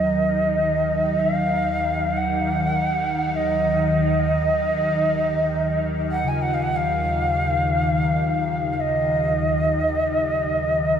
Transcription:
Already playing: ambient pad D#2 D#3, singing bowl F#3, native american-style wooden flute D#5
1.19 native american-style wooden flute F5
2.16 native american-style wooden flute F#5
3.35 native american-style wooden flute D#5
6.11 native american-style wooden flute F#5
6.24 singing bowl C#3, native american-style wooden flute G#5
6.41 native american-style wooden flute F#5
6.53 native american-style wooden flute F5
6.62 native american-style wooden flute F#5
6.76 native american-style wooden flute F5
8.73 native american-style wooden flute F5
8.80 native american-style wooden flute D#5

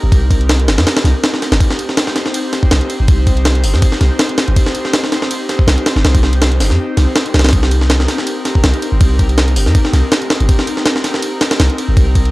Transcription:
Already playing: analog synth pad C4 D#4 G4 A#4
0.03 808-style bass G1
0.12 808-style bass C2, kick, ride
0.31 kick, ride
0.41 ride
0.49 snare, ride
0.60 ride
0.68 808-style bass G1, snare, ride
0.77 808-style bass F2, snare, ride
0.87 snare, ride
0.97 snare, ride
1.04 808-style bass C2, snare, ride
1.24 snare, ride
1.34 snare
1.42 snare, ride
1.52 808-style bass G1, snare, ride
1.60 analog synth pad C5, kick, ride
1.70 snare
1.79 ride
1.89 snare
1.97 snare, ride
2.07 snare
2.16 snare, ride
2.26 snare
2.34 ride
2.53 snare, ride
2.63 kick
2.71 808-style bass C2, snare, ride
2.81 ride
2.90 ride
3.00 808-style bass G1
3.08 808-style bass C2, kick, ride
3.27 kick, ride
3.37 ride
3.45 snare, ride
3.55 ride
3.64 808-style bass G1, open hi-hat
3.74 808-style bass F2, snare
3.82 kick, ride
3.92 snare
4.01 808-style bass C2, snare, ride
4.19 snare, ride
4.29 ride
4.38 snare, ride
4.48 808-style bass G1, ride
4.56 kick, ride
4.66 snare
4.75 ride
4.85 snare
4.93 snare, ride
5.04 snare
5.12 snare, ride
5.22 snare
5.31 ride
5.49 snare, ride
5.59 kick
5.67 808-style bass C2, snare, ride
5.78 ride
5.86 snare, ride
5.96 808-style bass G1, snare
6.05 808-style bass C2, snare, ride
6.15 kick, ride
6.23 snare
6.33 ride
6.42 snare, ride
6.52 ride
6.60 808-style bass G1, snare, open hi-hat
6.70 808-style bass F2, snare
6.97 808-style bass C2, snare, ride
7.15 snare, ride
7.26 ride
7.34 808-style bass C2, snare, ride
7.39 snare, ride
7.44 snare, ride
7.48 snare, ride
7.53 analog synth pad A#4, kick, ride
7.63 snare
7.71 ride
7.81 snare
7.90 snare, ride
8.00 snare
8.08 snare, ride
8.18 snare
8.27 ride
8.45 snare, ride
8.55 kick
8.64 808-style bass C2, snare, ride
8.74 ride
8.82 ride
8.92 808-style bass G1
9.01 808-style bass C2, kick, ride
9.19 kick, ride
9.29 ride
9.38 snare, ride
9.48 ride
9.56 808-style bass G1, open hi-hat
9.66 808-style bass F2, snare
9.75 kick, ride
9.85 snare
9.93 808-style bass C2, snare, ride
10.12 snare, ride
10.22 ride
10.30 snare, ride
10.40 808-style bass G1, ride
10.49 kick, ride
10.59 snare
10.67 ride
10.77 snare
10.86 snare, ride
10.96 snare
11.04 snare, ride
11.14 snare
11.22 ride
11.41 snare, ride
11.51 snare, ride
11.60 808-style bass C2, snare, ride
11.70 ride
11.78 ride
11.89 808-style bass G1
11.97 808-style bass C2, kick, ride
12.15 kick, ride
12.25 ride

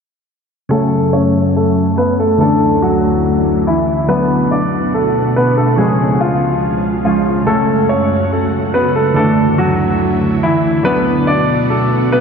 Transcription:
0.69 ambient pad F#2 F#3 A3 C#4, synth keys C#3 F#3 A3 C#4, upright piano A3 A4
1.13 upright piano C#4 C#5
1.56 upright piano A3 A4
1.98 upright piano B3 B4
2.20 upright piano A3 A4
2.38 ambient pad D2 D3 E4, synth keys D3 E3 A3 D4, upright piano A3 A4
2.82 upright piano F#3 F#4
3.67 upright piano E3 E4
4.07 ambient pad B2 B3 D4 F#4, synth keys D3 F#3 B3 D4, upright piano B3 B4
4.51 upright piano D4 D5
4.94 upright piano A3 A4
5.36 upright piano B3 B4
5.57 upright piano A3 A4
5.76 ambient pad C#2 C#3 G#3 F4, synth keys C#3 F3 G#3 C#4, upright piano G#3 G#4
6.21 upright piano F3 F4
7.04 synth keys C#3 F3 G#3 C#4, upright piano F3 F4
7.45 ambient pad F#2 A3 F#4, synth keys C#3 F#3 A3 C#4, upright piano A3 A4
7.89 upright piano C#4 C#5
8.32 upright piano A3 A4
8.74 upright piano B3 B4
8.96 upright piano A3 A4
9.14 ambient pad D2 D3 E4, synth keys D3 E3 A3 D4, upright piano A3 A4
9.58 upright piano F#3 F#4
10.43 upright piano E3 E4
10.83 ambient pad B2 B3 D4 F#4, synth keys D3 F#3 B3 D4, upright piano B3 B4
11.27 upright piano D4 D5
11.70 upright piano A3 A4
12.12 upright piano B3 B4

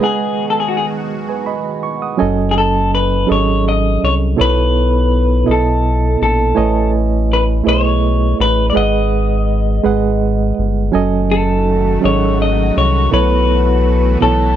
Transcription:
Already playing: analog synth pad B3 G#4
0.00 analog synth pad D#3 F#4, reed electric piano G#3 G#4 B4 D#5 F#5, clean electric guitar G#4
0.50 clean electric guitar A4
0.60 clean electric guitar G#4
0.68 clean electric guitar F#4
0.77 clean electric guitar G#4
1.29 reed electric piano B4 G#5
1.46 reed electric piano D#5 B5
1.83 reed electric piano C#6
2.02 reed electric piano F#5 D#6
2.17 analog synth bass F#1, reed electric piano F#3 C#4 A4 D#5 G#5
2.51 clean electric guitar G#4
2.58 clean electric guitar A4
2.95 clean electric guitar B4
3.27 analog synth bass G#1, reed electric piano F#3 C#4 G#4 A4 D#5
3.32 clean electric guitar C#5
3.69 clean electric guitar D#5
4.03 analog synth bass C2, clean electric guitar C#5
4.36 reed electric piano B2 B3 E4 A4 C#5
4.40 analog synth bass B1, clean electric guitar B4
5.44 reed electric piano B2 B3 E4 A4 D#5
5.49 analog synth bass B1, clean electric guitar A4
6.22 analog synth bass A#1, clean electric guitar A4
6.55 analog synth bass A1, reed electric piano A3 E4 B4 C#5 D#5 G#5
7.33 clean electric guitar B4
7.64 analog synth bass B1, reed electric piano A3 E4 G#4 B4 C#5 D#5
7.69 clean electric guitar C#5
8.40 analog synth bass A1, clean electric guitar B4
8.70 reed electric piano G#3, clean electric guitar D5
8.74 analog synth bass G#1, reed electric piano G#4 B4 D#5 F#5, clean electric guitar D#5
9.83 analog synth bass G#1, reed electric piano G#3 G#4 B4 D#5 F#5
10.59 analog synth bass G1
10.92 analog synth bass F#1, analog synth pad D#3 F#3 A3 F#4, reed electric piano F#3 C#4 A4 D#5 G#5
11.31 clean electric guitar A4
12.01 analog synth bass G#1, reed electric piano F#3 C#4 G#4 A4 D#5
12.05 clean electric guitar C#5
12.42 clean electric guitar D#5
12.77 analog synth bass C2, clean electric guitar C#5
13.10 analog synth bass B1, reed electric piano B2 B3 E4 A4 C#5, analog synth pad E3 A3, clean electric guitar B4
13.15 analog synth pad B3
14.20 analog synth bass B1, reed electric piano B2 B3 E4 A4 C#5, clean electric guitar A4

